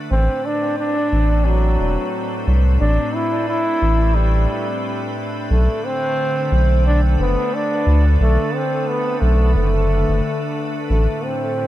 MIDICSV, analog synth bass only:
0, 0, Header, 1, 2, 480
1, 0, Start_track
1, 0, Tempo, 674157
1, 81, Time_signature, 4, 2, 24, 8
1, 8309, End_track
2, 0, Start_track
2, 0, Title_t, "Analog synth bass"
2, 0, Program_c, 0, 38
2, 78, Note_on_c, 0, 33, 95
2, 203, Note_off_c, 0, 33, 0
2, 800, Note_on_c, 0, 33, 97
2, 1261, Note_off_c, 0, 33, 0
2, 1279, Note_on_c, 0, 28, 73
2, 1404, Note_off_c, 0, 28, 0
2, 1760, Note_on_c, 0, 36, 92
2, 1977, Note_off_c, 0, 36, 0
2, 2001, Note_on_c, 0, 33, 94
2, 2125, Note_off_c, 0, 33, 0
2, 2720, Note_on_c, 0, 33, 98
2, 3181, Note_off_c, 0, 33, 0
2, 3920, Note_on_c, 0, 35, 97
2, 4044, Note_off_c, 0, 35, 0
2, 4641, Note_on_c, 0, 35, 96
2, 5102, Note_off_c, 0, 35, 0
2, 5121, Note_on_c, 0, 30, 77
2, 5245, Note_off_c, 0, 30, 0
2, 5601, Note_on_c, 0, 38, 93
2, 5817, Note_off_c, 0, 38, 0
2, 5841, Note_on_c, 0, 35, 96
2, 5965, Note_off_c, 0, 35, 0
2, 6562, Note_on_c, 0, 35, 96
2, 6797, Note_off_c, 0, 35, 0
2, 6801, Note_on_c, 0, 30, 99
2, 7155, Note_off_c, 0, 30, 0
2, 7183, Note_on_c, 0, 30, 82
2, 7270, Note_off_c, 0, 30, 0
2, 7761, Note_on_c, 0, 33, 94
2, 7885, Note_off_c, 0, 33, 0
2, 8309, End_track
0, 0, End_of_file